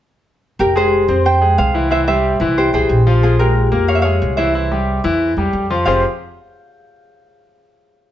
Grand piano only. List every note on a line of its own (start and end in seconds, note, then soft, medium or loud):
0.76 1.03 G#3 medium
0.76 1.03 G#4 medium
1.09 1.36 C4 medium
1.09 1.36 C5 medium
1.41 1.69 G#3 medium
1.41 1.69 G#4 medium
1.74 1.88 E3 medium
1.74 1.88 E4 medium
1.90 2.04 E3 medium
1.90 2.04 E4 medium
2.08 2.35 G3 medium
2.08 2.35 G4 medium
2.41 2.68 E3 medium
2.41 2.68 E4 medium
2.74 3.00 E3 medium
2.74 3.01 G5 medium
3.07 3.33 F3 medium
3.07 3.34 F4 medium
3.39 3.66 G#3 medium
3.39 3.66 A#4 medium
3.72 3.99 A#3 medium
3.72 3.99 A#4 medium
4.05 4.32 G#3 medium
4.05 4.32 G#4 medium
4.38 4.52 E3 medium
4.38 4.52 E4 medium
4.55 4.68 E3 medium
4.55 4.68 E4 medium
4.71 4.98 G3 medium
4.71 4.98 G4 medium
5.04 5.31 E3 medium
5.04 5.31 E4 medium
5.38 5.65 G3 medium
5.38 5.65 G4 medium
5.70 5.84 F3 medium
5.70 5.84 F4 medium
5.86 6.02 F3 medium
5.86 6.02 C4 medium
5.86 6.02 F4 medium
5.86 6.02 G4 medium
5.86 6.02 G#4 medium
5.86 6.02 C5 medium